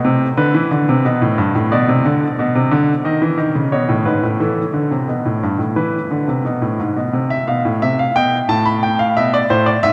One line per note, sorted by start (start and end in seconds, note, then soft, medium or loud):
0.00 0.34 C5 medium
0.05 0.25 C3 medium
0.37 0.54 D3 medium
0.37 1.67 B4 medium
0.54 0.71 E3 medium
0.71 0.87 D3 medium
0.89 1.04 C3 medium
1.05 1.21 B2 medium
1.22 1.38 A2 medium
1.38 1.54 G2 medium
1.55 1.71 A2 medium
1.72 1.88 B2 medium
1.72 3.01 D5 medium
1.88 2.04 C3 medium
2.05 2.26 D3 medium
2.39 2.55 B2 medium
2.55 2.71 C3 medium
2.71 2.92 D3 medium
3.05 3.21 D#3 medium
3.05 3.71 D#5 medium
3.22 3.38 E3 medium
3.38 3.55 D#3 medium
3.55 3.72 C#3 medium
3.72 3.89 B2 medium
3.72 3.93 C#5 medium
3.89 4.06 A2 medium
4.05 4.23 G#2 medium
4.05 4.27 B4 medium
4.23 4.40 A2 medium
4.40 4.61 E3 medium
4.40 5.73 A4 medium
4.74 4.91 D3 medium
4.91 5.08 C3 medium
5.08 5.25 B2 medium
5.26 5.42 A2 medium
5.43 5.60 G2 medium
5.59 5.76 A2 medium
5.76 5.98 E3 medium
5.76 6.76 B4 medium
6.11 6.28 D3 medium
6.28 6.45 C3 medium
6.45 6.62 B2 medium
6.62 6.79 A2 medium
6.79 6.96 G#2 medium
6.96 7.13 B2 medium
7.13 7.34 C3 medium
7.30 7.47 E5 medium
7.47 7.64 B2 medium
7.47 7.69 F5 medium
7.65 7.81 A2 medium
7.82 8.03 C3 medium
7.82 7.98 E5 medium
7.99 8.15 F5 medium
8.16 8.36 B2 medium
8.16 8.36 G5 medium
8.49 9.14 A2 medium
8.49 8.65 A5 medium
8.65 8.82 B5 medium
8.83 8.99 G5 medium
8.99 9.15 F5 medium
9.17 9.37 B2 medium
9.17 9.32 E5 medium
9.34 9.49 D5 medium
9.50 9.71 A2 medium
9.50 9.66 C5 medium
9.66 9.82 D5 medium
9.83 9.93 G#2 medium
9.83 9.93 E5 loud